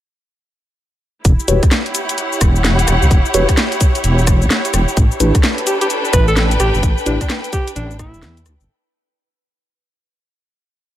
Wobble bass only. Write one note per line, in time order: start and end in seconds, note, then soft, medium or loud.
1.25 1.36 E1 loud
1.48 1.60 E1 loud
2.41 2.85 E1 medium
2.88 2.99 E1 loud
3.02 3.09 C#2 loud
3.11 3.23 E1 medium
3.34 3.46 E1 medium
4.04 4.43 E1 medium
4.42 4.49 B1 medium
4.74 4.85 E1 medium
4.97 5.09 A1 loud
5.20 5.32 A1 loud
6.13 6.57 A1 medium
6.60 6.71 A1 loud
6.74 6.81 G1 loud
6.83 6.95 A1 loud
7.06 7.18 A1 loud
7.76 8.15 A1 loud
8.14 8.24 E1 medium
8.23 8.47 E2 medium
8.46 8.57 D2 medium
8.61 8.67 G1 loud